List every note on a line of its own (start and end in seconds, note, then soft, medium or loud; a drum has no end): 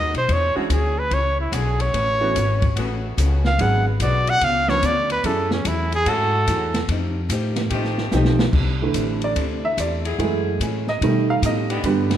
0.00 0.13 D#2 medium
0.00 0.17 G#3 medium
0.00 0.17 D#4 medium
0.00 0.17 F#4 medium
0.00 0.18 B4 medium
0.00 0.14 D#5 loud
0.14 0.28 B1 medium
0.14 0.34 C5 loud
0.14 ride soft
0.29 0.54 E2 medium
0.29 0.59 E3 soft
0.29 0.59 D4 soft
0.29 0.59 G#4 soft
0.29 0.59 C#5 medium
0.29 0.57 C#5 loud
0.29 kick soft
0.29 ride medium
0.55 0.66 D3 medium
0.55 0.69 E3 medium
0.55 0.66 G#3 medium
0.55 0.69 G#3 medium
0.55 0.66 C#4 medium
0.55 0.69 C#4 medium
0.55 0.69 D4 medium
0.55 0.74 E4 soft
0.55 0.66 F#4 loud
0.55 0.69 F#4 medium
0.55 muted upright bass stroke soft
0.69 1.10 D2 medium
0.69 0.99 E3 medium
0.69 1.00 D4 medium
0.69 1.00 G#4 medium
0.69 1.00 C#5 medium
0.69 kick soft
0.69 hi-hat pedal medium
0.69 ride medium
0.99 1.15 B4 medium
1.11 1.51 C#2 medium
1.11 1.41 E3 soft
1.11 1.41 D4 soft
1.11 1.41 G#4 soft
1.11 1.41 C#5 soft
1.11 1.40 C#5 loud
1.11 kick soft
1.11 ride medium
1.41 1.55 E4 medium
1.51 1.93 B1 medium
1.51 1.94 D3 medium
1.51 1.82 E3 medium
1.51 1.94 G#3 medium
1.51 1.94 C#4 medium
1.51 1.82 D4 medium
1.51 1.94 F#4 medium
1.51 1.82 G#4 medium
1.51 1.83 G#4 medium
1.51 1.82 C#5 medium
1.51 kick soft
1.51 hi-hat pedal medium
1.51 ride medium
1.80 2.78 C#5 loud
1.80 ride soft
1.93 2.34 A1 medium
1.93 2.22 A3 soft
1.93 2.23 C#4 medium
1.93 2.23 F#4 medium
1.93 2.24 B4 medium
1.93 kick soft
1.93 ride medium
2.21 2.34 E3 medium
2.21 2.34 A3 medium
2.21 2.34 B3 medium
2.21 2.35 C#4 medium
2.21 2.34 F#4 medium
2.35 2.75 G#1 medium
2.35 2.64 A3 medium
2.35 2.65 C#4 medium
2.35 2.65 F#4 medium
2.35 2.65 B4 medium
2.35 kick soft
2.35 hi-hat pedal medium
2.35 ride medium
2.62 kick medium
2.62 ride soft
2.76 3.17 A1 medium
2.76 3.40 C#3 medium
2.76 3.40 A3 medium
2.76 3.06 A3 medium
2.76 3.40 B3 medium
2.76 3.06 C#4 medium
2.76 3.39 F#4 medium
2.76 3.06 F#4 medium
2.76 3.07 B4 medium
2.76 kick soft
2.76 ride medium
3.17 3.58 C#2 loud
3.17 3.47 A3 medium
3.17 3.47 C#4 medium
3.17 3.47 F#4 medium
3.17 3.48 B4 medium
3.17 kick soft
3.17 hi-hat pedal medium
3.17 ride medium
3.45 3.63 F5 loud
3.45 snare medium
3.58 3.99 G#1 medium
3.58 3.84 F#3 medium
3.58 3.88 G#3 soft
3.58 3.84 G#3 medium
3.58 3.84 B3 medium
3.58 3.88 D4 medium
3.58 3.84 D4 medium
3.58 3.88 F#4 medium
3.58 3.84 G#4 medium
3.58 3.88 B4 medium
3.58 3.88 F#5 medium
3.58 kick soft
3.58 ride medium
3.88 4.03 B4 medium
4.00 4.40 B1 medium
4.00 4.43 D3 medium
4.00 4.42 G#3 medium
4.00 4.30 G#3 medium
4.00 4.42 B3 medium
4.00 4.30 D4 medium
4.00 4.43 F#4 medium
4.00 4.30 F#4 medium
4.00 4.31 B4 medium
4.00 4.31 D5 loud
4.00 kick soft
4.00 hi-hat pedal medium
4.00 ride medium
4.27 4.46 F#5 loud
4.27 ride medium
4.41 4.82 C#2 medium
4.41 4.71 C#3 soft
4.41 4.71 B3 soft
4.41 4.71 D4 medium
4.41 4.71 F5 loud
4.41 kick soft
4.41 ride medium
4.45 4.72 F4 medium
4.68 4.82 F3 medium
4.68 4.82 B3 medium
4.68 4.82 C#4 medium
4.68 4.82 D4 medium
4.68 4.82 B4 medium
4.68 4.87 C#5 loud
4.68 snare medium
4.82 5.23 D2 medium
4.82 5.12 C#3 medium
4.82 5.12 B3 medium
4.82 5.12 D4 medium
4.82 5.13 F4 medium
4.82 5.11 D5 loud
4.82 kick soft
4.82 hi-hat pedal medium
4.82 ride medium
5.10 5.28 B4 medium
5.10 ride medium
5.24 5.64 F#2 medium
5.24 5.87 F#3 medium
5.24 5.53 F#3 medium
5.24 5.87 A3 medium
5.24 5.54 A3 medium
5.24 5.88 C#4 medium
5.24 5.88 E4 medium
5.24 5.54 E4 medium
5.24 5.88 G#4 medium
5.24 5.54 G#4 medium
5.24 5.52 A4 medium
5.24 kick soft
5.24 ride medium
5.51 5.69 C#4 medium
5.51 snare medium
5.65 6.05 E2 medium
5.65 5.95 F#3 medium
5.65 5.95 A3 medium
5.65 5.94 E4 medium
5.65 5.95 E4 medium
5.65 5.95 G#4 medium
5.65 kick soft
5.65 hi-hat pedal medium
5.65 ride medium
5.92 6.11 G#4 loud
5.92 ride medium
6.06 6.46 G#2 medium
6.06 6.69 F#3 loud
6.06 6.36 F#3 medium
6.06 6.36 A3 soft
6.06 6.69 E4 medium
6.06 6.36 E4 medium
6.06 6.69 F#4 loud
6.06 6.37 G#4 medium
6.06 6.69 A4 medium
6.06 6.90 A4 loud
6.06 kick soft
6.06 ride medium
6.47 6.88 E2 medium
6.47 6.77 F#3 medium
6.47 6.77 A3 medium
6.47 6.77 E4 medium
6.47 6.78 G#4 medium
6.47 kick soft
6.47 hi-hat pedal medium
6.47 ride medium
6.74 snare medium
6.74 ride medium
6.88 7.28 F2 medium
6.88 7.18 F3 medium
6.88 7.19 A3 medium
6.88 7.19 D#4 medium
6.88 7.19 G4 medium
6.88 kick soft
6.88 ride medium
7.29 7.70 A2 medium
7.29 7.59 F3 medium
7.29 7.60 A3 medium
7.29 7.60 D#4 medium
7.29 7.60 G4 medium
7.29 kick soft
7.29 hi-hat pedal medium
7.29 ride medium
7.56 snare medium
7.56 ride medium
7.69 8.11 A1 medium
7.69 8.34 F3 medium
7.69 8.01 F3 medium
7.69 8.33 A3 medium
7.69 8.01 A3 medium
7.69 8.34 D#4 medium
7.69 8.34 G4 loud
7.69 kick soft
7.69 ride medium
7.74 8.01 D#4 medium
7.74 8.02 G4 medium
7.84 snare soft
7.98 snare medium
8.12 8.52 B1 loud
8.12 8.41 F3 medium
8.12 8.37 F3 medium
8.12 8.37 A3 medium
8.12 8.42 A3 medium
8.12 8.38 C4 medium
8.12 8.37 D#4 medium
8.12 8.42 D#4 medium
8.12 8.37 G4 medium
8.12 8.42 G4 medium
8.12 snare medium
8.12 hi-hat pedal medium
8.25 snare medium
8.39 snare medium
8.52 8.93 C2 medium
8.52 8.82 C3 soft
8.52 8.82 A3 medium
8.52 8.82 D4 medium
8.52 8.83 E4 medium
8.52 kick medium
8.52 crash medium
8.82 10.15 D3 soft
8.82 10.16 E3 soft
8.82 10.16 A3 soft
8.94 9.35 A1 medium
8.94 9.23 C3 medium
8.94 9.23 A3 medium
8.94 9.23 D4 medium
8.94 9.24 E4 medium
8.94 kick soft
8.94 hi-hat pedal medium
8.94 ride medium
9.22 9.62 D5 medium
9.22 ride soft
9.35 9.76 D2 medium
9.35 9.64 C3 soft
9.35 9.64 A3 soft
9.35 9.65 D4 soft
9.35 9.65 E4 medium
9.35 kick soft
9.35 ride medium
9.65 9.78 E5 medium
9.77 10.17 E2 medium
9.77 10.06 C3 medium
9.77 10.06 A3 medium
9.77 10.06 D4 medium
9.77 10.06 E4 medium
9.77 10.17 D5 medium
9.77 kick soft
9.77 hi-hat pedal medium
9.77 ride medium
10.05 10.57 F#3 medium
10.05 10.58 E4 medium
10.05 10.58 G#4 loud
10.05 ride medium
10.18 10.58 F#2 medium
10.18 10.84 E3 soft
10.18 10.47 F#3 soft
10.18 10.84 G#3 soft
10.18 10.84 A3 medium
10.18 10.48 A3 soft
10.18 10.48 E4 medium
10.18 10.48 G#4 medium
10.18 kick soft
10.18 ride medium
10.60 11.00 A2 medium
10.60 10.89 F#3 medium
10.60 10.89 A3 medium
10.60 10.89 E4 medium
10.60 10.89 G#4 medium
10.60 kick soft
10.60 hi-hat pedal soft
10.60 ride medium
10.87 11.26 D#5 medium
10.87 snare soft
11.01 11.41 B2 medium
11.01 11.30 B2 soft
11.01 11.80 D#3 soft
11.01 11.81 G3 soft
11.01 11.30 A3 medium
11.01 11.81 A3 medium
11.01 11.31 D#4 medium
11.01 11.31 G4 medium
11.01 kick soft
11.01 ride medium
11.30 11.43 F5 medium
11.42 11.82 A2 medium
11.42 11.72 B2 medium
11.42 11.72 A3 medium
11.42 11.72 D#4 medium
11.42 11.82 D#5 medium
11.42 kick soft
11.42 hi-hat pedal medium
11.42 ride medium
11.46 11.73 G4 medium
11.70 12.17 E3 loud
11.70 12.17 B3 medium
11.70 12.17 D4 medium
11.70 12.17 G4 loud
11.70 ride soft
11.83 12.17 G2 medium
11.83 12.17 D3 medium
11.83 12.12 E3 soft
11.83 12.17 G3 soft
11.83 12.13 B3 medium
11.83 12.17 B3 medium
11.83 12.13 D4 medium
11.83 12.13 G4 medium
11.83 kick soft
11.83 ride medium
12.11 snare medium
12.11 ride medium